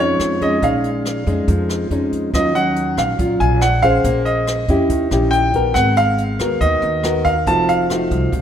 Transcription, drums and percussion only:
0.20 cross-stick, closed hi-hat
0.41 kick, closed hi-hat
0.62 kick, closed hi-hat
0.84 closed hi-hat
1.05 cross-stick, closed hi-hat
1.27 kick, closed hi-hat
1.48 kick, closed hi-hat
1.69 cross-stick, closed hi-hat
1.91 closed hi-hat
2.12 kick, closed hi-hat
2.34 kick, cross-stick, closed hi-hat
2.55 closed hi-hat
2.76 closed hi-hat
2.97 cross-stick, closed hi-hat
3.19 kick, closed hi-hat
3.40 closed hi-hat
3.61 cross-stick, closed hi-hat
3.83 kick, closed hi-hat
4.04 kick, closed hi-hat
4.26 closed hi-hat
4.47 cross-stick, closed hi-hat
4.68 kick, closed hi-hat
4.90 kick, closed hi-hat
5.11 cross-stick, closed hi-hat
5.33 closed hi-hat
5.54 kick, closed hi-hat
5.75 kick, cross-stick, closed hi-hat
5.96 closed hi-hat
6.18 closed hi-hat
6.39 cross-stick, closed hi-hat
6.61 kick, closed hi-hat
6.82 closed hi-hat
7.03 cross-stick, closed hi-hat
7.25 kick, closed hi-hat
7.47 kick, closed hi-hat
7.69 closed hi-hat
7.90 cross-stick, closed hi-hat
8.11 kick, closed hi-hat
8.32 kick, closed hi-hat

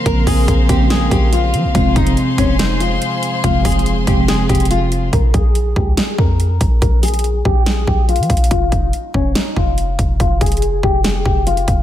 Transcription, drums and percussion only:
0.06 kick, closed hi-hat
0.27 kick, open hi-hat
0.48 kick, closed hi-hat
0.69 kick, closed hi-hat
0.90 snare, closed hi-hat
1.11 kick, closed hi-hat
1.33 closed hi-hat
1.54 closed hi-hat
1.75 kick, closed hi-hat
1.96 kick, closed hi-hat
2.07 closed hi-hat
2.17 closed hi-hat
2.38 kick, closed hi-hat
2.59 snare, closed hi-hat
2.80 closed hi-hat
3.02 closed hi-hat
3.23 closed hi-hat
3.44 kick, closed hi-hat
3.65 kick, closed hi-hat, open hi-hat
3.72 closed hi-hat
3.79 closed hi-hat
3.86 closed hi-hat
4.07 kick, closed hi-hat
4.28 snare, closed hi-hat
4.49 kick, closed hi-hat
4.55 closed hi-hat
4.60 closed hi-hat
4.65 closed hi-hat
4.71 closed hi-hat
4.92 closed hi-hat
5.13 kick, closed hi-hat
5.34 kick, closed hi-hat
5.55 closed hi-hat
5.76 kick
5.97 snare, closed hi-hat
6.18 kick
6.40 closed hi-hat
6.61 kick, closed hi-hat
6.82 kick, closed hi-hat
7.03 closed hi-hat, open hi-hat
7.08 closed hi-hat
7.14 closed hi-hat
7.19 closed hi-hat
7.24 closed hi-hat
7.45 kick
7.66 snare, closed hi-hat
7.87 kick
8.09 closed hi-hat
8.16 closed hi-hat
8.23 closed hi-hat
8.30 kick, closed hi-hat
8.37 closed hi-hat
8.44 closed hi-hat
8.51 kick, closed hi-hat
8.72 kick, closed hi-hat
8.93 closed hi-hat
9.14 kick
9.35 snare, closed hi-hat
9.56 kick
9.78 closed hi-hat
9.99 kick, closed hi-hat
10.20 kick, closed hi-hat
10.41 kick, closed hi-hat
10.46 closed hi-hat
10.52 closed hi-hat
10.57 closed hi-hat
10.62 closed hi-hat
10.83 kick
11.04 snare, closed hi-hat
11.26 kick
11.47 closed hi-hat
11.57 closed hi-hat
11.68 kick, closed hi-hat

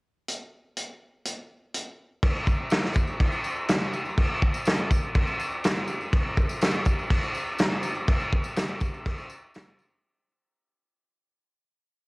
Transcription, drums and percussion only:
0.28 closed hi-hat
0.77 closed hi-hat
1.25 closed hi-hat
1.74 closed hi-hat
2.23 kick, crash
2.47 kick, tambourine
2.70 snare, tambourine, crash
2.83 snare, tambourine
2.94 kick, tambourine
3.07 tambourine
3.20 kick, crash
3.32 tambourine
3.44 tambourine
3.56 tambourine
3.69 snare, tambourine, crash
3.81 tambourine
3.93 tambourine
4.05 tambourine
4.18 kick, crash
4.42 kick
4.54 tambourine
4.65 snare, tambourine, crash
4.78 tambourine
4.91 kick, tambourine
5.03 tambourine
5.15 kick, crash
5.28 tambourine
5.40 tambourine
5.52 tambourine
5.64 snare, tambourine, crash
5.76 tambourine
5.88 tambourine
6.01 tambourine
6.13 kick, crash
6.37 kick, tambourine
6.49 tambourine
6.61 snare, tambourine, crash
6.85 kick, tambourine
6.99 tambourine
7.10 kick, crash
7.23 tambourine
7.35 tambourine
7.47 tambourine
7.58 snare, tambourine, crash
7.71 tambourine
7.83 tambourine
7.95 tambourine
8.07 kick, tambourine, crash
8.20 tambourine
8.32 kick
8.44 tambourine
8.56 snare, tambourine, crash
8.68 tambourine
8.80 kick, tambourine
8.94 tambourine
9.05 kick, tambourine, crash
9.18 tambourine
9.30 tambourine
9.54 snare, tambourine, crash
9.79 tambourine
9.92 tambourine

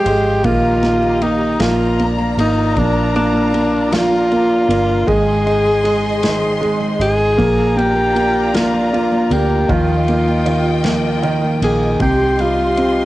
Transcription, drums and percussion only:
0.06 ride
0.44 kick, ride
0.83 snare, ride
1.22 ride
1.60 snare, ride
1.99 ride
2.39 ride
2.76 kick, ride
3.15 ride
3.54 ride
3.92 snare, ride
4.31 ride
4.70 ride
5.08 kick, ride
5.47 ride
5.85 ride
6.23 snare, ride
6.63 ride
7.01 ride
7.39 kick, ride
7.79 ride
8.16 ride
8.54 snare, ride
8.94 ride
9.31 ride
9.69 kick, ride
10.08 ride
10.46 ride
10.84 snare, ride
11.23 ride
11.62 ride
12.00 kick, ride
12.39 ride
12.77 ride

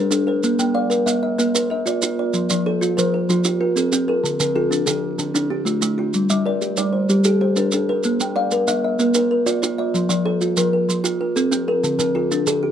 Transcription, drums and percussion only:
0.11 maracas
0.43 maracas
0.59 maracas
0.91 maracas
1.07 maracas
1.39 maracas
1.55 maracas
1.87 maracas
2.02 maracas
2.34 maracas
2.50 maracas
2.82 maracas
2.98 maracas
3.30 maracas
3.44 maracas
3.77 maracas
3.93 maracas
4.25 maracas
4.40 maracas
4.72 maracas
4.87 maracas
5.19 maracas
5.35 maracas
5.67 maracas
5.82 maracas
6.14 maracas
6.30 maracas
6.62 maracas
6.77 maracas
7.09 maracas
7.24 maracas
7.56 maracas
7.72 maracas
8.03 maracas
8.20 maracas
8.51 maracas
8.68 maracas
8.99 maracas
9.14 maracas
9.47 maracas
9.63 maracas
9.95 maracas
10.10 maracas
10.41 maracas
10.57 maracas
10.90 maracas
11.05 maracas
11.36 maracas
11.52 maracas
11.84 maracas
11.99 maracas
12.32 maracas
12.47 maracas

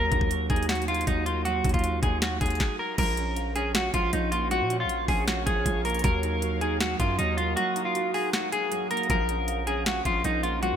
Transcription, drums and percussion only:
0.12 kick, closed hi-hat
0.21 kick
0.31 closed hi-hat
0.50 kick, closed hi-hat
0.56 closed hi-hat
0.63 closed hi-hat
0.69 snare, closed hi-hat
0.75 closed hi-hat
0.82 closed hi-hat
0.88 closed hi-hat
0.94 closed hi-hat
1.01 closed hi-hat
1.07 kick, closed hi-hat
1.26 closed hi-hat
1.45 closed hi-hat
1.65 kick, closed hi-hat
1.69 closed hi-hat
1.74 kick, closed hi-hat
1.79 closed hi-hat
1.84 closed hi-hat
2.03 kick, closed hi-hat
2.22 snare, closed hi-hat
2.41 kick, closed hi-hat
2.46 closed hi-hat
2.50 closed hi-hat
2.55 closed hi-hat
2.60 kick, snare
2.98 kick, closed hi-hat, crash
3.17 closed hi-hat
3.36 closed hi-hat
3.56 closed hi-hat
3.75 snare, closed hi-hat
3.94 kick, closed hi-hat
4.13 closed hi-hat
4.32 closed hi-hat
4.51 closed hi-hat
4.70 closed hi-hat
4.89 closed hi-hat
5.08 kick, open hi-hat
5.28 snare, closed hi-hat
5.47 kick, closed hi-hat
5.66 kick, closed hi-hat
5.85 closed hi-hat, open hi-hat
5.90 closed hi-hat
5.95 closed hi-hat
5.99 closed hi-hat
6.04 kick, closed hi-hat
6.23 closed hi-hat
6.42 closed hi-hat
6.61 closed hi-hat
6.80 snare, closed hi-hat
7.00 kick, closed hi-hat
7.19 closed hi-hat
7.38 closed hi-hat
7.57 closed hi-hat
7.76 closed hi-hat
7.95 closed hi-hat
8.14 open hi-hat
8.33 snare, closed hi-hat
8.52 closed hi-hat
8.72 closed hi-hat
8.91 closed hi-hat
8.97 closed hi-hat
9.03 closed hi-hat
9.10 kick, closed hi-hat
9.29 closed hi-hat
9.48 closed hi-hat
9.67 closed hi-hat
9.86 snare, closed hi-hat
10.05 kick, closed hi-hat
10.24 closed hi-hat
10.43 closed hi-hat
10.63 closed hi-hat

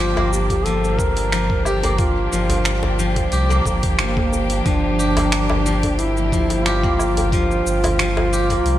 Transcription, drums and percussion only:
0.00 shaker
0.17 djembe slap, djembe bass, low woodblock
0.33 shaker
0.50 kick, open hi-hat, djembe slap, djembe tone, shaker
0.66 open hi-hat, shaker
0.84 shaker
0.99 kick, shaker
1.17 open hi-hat, djembe slap, shaker
1.32 finger snap, open hi-hat, shaker
1.50 kick
1.65 djembe tone, low woodblock, shaker
1.83 open hi-hat, djembe bass, shaker
1.98 kick, open hi-hat, shaker
2.33 shaker
2.49 open hi-hat, djembe slap, djembe bass, shaker
2.65 finger snap, open hi-hat, shaker
2.83 djembe slap, djembe bass
2.99 shaker
3.16 kick, open hi-hat, djembe slap, djembe tone, shaker
3.32 open hi-hat, shaker
3.49 djembe tone, shaker
3.66 kick, djembe tone, shaker
3.83 kick, open hi-hat, shaker
3.99 finger snap, open hi-hat, shaker
4.17 kick, djembe tone
4.32 djembe bass, shaker
4.50 open hi-hat, shaker
4.66 kick, open hi-hat, shaker
5.00 shaker
5.17 open hi-hat, djembe slap, djembe bass, low woodblock, shaker
5.32 finger snap, open hi-hat, shaker
5.49 djembe slap, djembe bass, low woodblock
5.66 shaker
5.83 kick, open hi-hat, djembe slap, djembe tone, shaker
5.99 open hi-hat, shaker
6.17 shaker
6.32 kick, shaker
6.50 open hi-hat, djembe slap, shaker
6.66 finger snap, open hi-hat, shaker
6.84 kick
6.99 djembe tone, low woodblock, shaker
7.17 open hi-hat, djembe bass, shaker
7.32 kick, open hi-hat, shaker
7.51 shaker
7.67 shaker
7.84 open hi-hat, djembe slap, djembe tone, djembe bass, low woodblock, shaker
7.99 finger snap, open hi-hat, shaker
8.17 djembe slap, djembe bass, low woodblock
8.33 shaker
8.50 kick, open hi-hat, djembe slap, djembe tone, shaker
8.66 open hi-hat, shaker

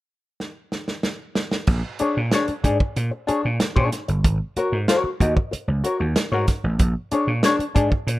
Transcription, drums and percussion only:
0.40 snare
0.72 snare
0.88 snare
1.03 snare
1.35 snare
1.51 snare
1.67 kick, crash
1.99 closed hi-hat
2.32 snare, closed hi-hat
2.48 closed hi-hat
2.64 kick, closed hi-hat
2.80 kick
2.96 closed hi-hat
3.28 closed hi-hat
3.60 snare, closed hi-hat
3.76 kick
3.92 snare, closed hi-hat
4.08 closed hi-hat
4.24 kick, closed hi-hat
4.56 closed hi-hat
4.88 snare, closed hi-hat
5.20 kick, closed hi-hat
5.37 kick
5.53 closed hi-hat
5.84 closed hi-hat
6.16 snare, closed hi-hat
6.47 kick, snare, closed hi-hat
6.79 kick, closed hi-hat
7.11 closed hi-hat
7.43 snare, closed hi-hat
7.60 closed hi-hat
7.76 kick, closed hi-hat
7.92 kick
8.08 closed hi-hat

